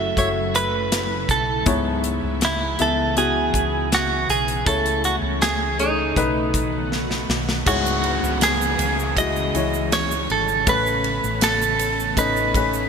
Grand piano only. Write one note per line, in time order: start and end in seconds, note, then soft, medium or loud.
0.00 1.69 C#3 medium
0.00 0.16 A3 medium
0.00 0.17 F#4 medium
0.00 0.18 E5 medium
0.16 1.59 A3 medium
0.16 1.60 F#4 medium
0.16 1.60 E5 medium
1.66 2.75 G#2 medium
1.66 2.73 B3 medium
1.66 2.73 E4 medium
1.66 2.74 C#5 medium
2.79 3.15 B3 medium
2.79 3.15 E4 medium
2.79 3.15 E5 medium
3.16 4.59 B3 medium
3.16 4.59 E4 medium
3.16 4.60 F#4 medium
4.66 5.75 C#3 medium
4.66 5.73 A3 medium
4.66 5.74 E4 medium
4.66 5.74 C#5 medium
5.79 6.14 A3 medium
5.79 6.15 G#4 medium
5.79 6.15 C#5 medium
6.16 7.59 A3 medium
6.16 7.59 D#4 medium
6.16 7.59 B4 medium
7.66 8.75 G#2 medium
7.66 9.09 G#3 medium
7.66 9.09 E4 medium
7.66 9.10 C#5 medium
9.18 9.53 G#3 medium
9.18 9.53 E4 medium
9.18 9.53 F#4 medium
9.54 10.61 E3 medium
9.54 10.61 E4 medium
9.54 10.62 C#5 medium
10.67 12.09 A3 medium
10.67 12.10 C#4 medium
10.67 12.10 B4 medium
12.17 12.52 A3 medium
12.17 12.53 C#4 medium
12.17 12.53 D#4 medium
12.55 12.89 A3 medium
12.55 12.89 C#4 medium
12.55 12.89 B4 medium